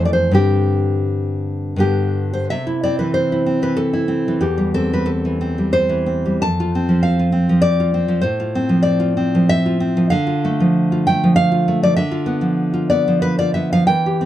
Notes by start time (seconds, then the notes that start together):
Already playing: F2 E3 A3
0.05 D5
0.13 C5
0.31 G2 D3 C4 G4
1.76 G2 D3 B3 G4
2.33 C5
2.50 C3 E5
2.67 E4
2.83 C4 D5
2.99 E3 B4
3.14 C5
3.32 E4
3.46 C4
3.62 E3 B4
3.77 A4
3.93 E4
4.08 C4
4.28 E3
4.41 E2 G4
4.58 G3
4.74 C4 A4
4.93 G3 B4
5.06 A4
5.25 E3
5.41 C4
5.58 G3
5.73 C5
5.89 E3
6.06 C4
6.26 G3
6.42 F2 A5
6.60 F4
6.75 C4
6.89 F3
7.03 F5
7.19 F4
7.32 C4
7.49 F3
7.62 D5
7.80 F4
7.94 C4
8.08 F3
8.21 A2 C5
8.40 F4
8.55 C4
8.69 F3
8.83 D5
9.00 F4
9.17 C4
9.35 F3
9.49 E5
9.66 F4
9.80 C4
9.97 F3
10.10 D3 F5
10.27 F4
10.45 A3
10.60 F3
10.92 F4
11.07 A3 G5
11.24 F3
11.36 F5
11.52 F4
11.68 A3
11.83 F3 D5
11.96 D3 E5
12.11 F4
12.26 B3
12.41 F3
12.74 F4
12.90 B3 D5
13.08 F3
13.22 B4
13.39 F4 D5
13.54 B3 E5
13.73 F3 F5
13.87 E3 G5
14.06 G4
14.21 C4